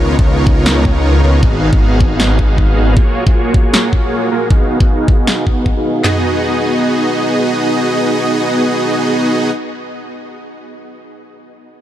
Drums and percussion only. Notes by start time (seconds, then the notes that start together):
0.19 kick
0.47 kick
0.66 snare
0.85 kick
1.43 kick
1.73 kick
2.00 kick
2.20 snare
2.39 kick
2.58 kick
2.97 kick
3.27 kick
3.54 kick
3.74 snare
3.93 kick
4.51 kick
4.80 kick
5.08 kick
5.27 snare
5.47 kick
5.66 kick
6.04 snare, clap, floor tom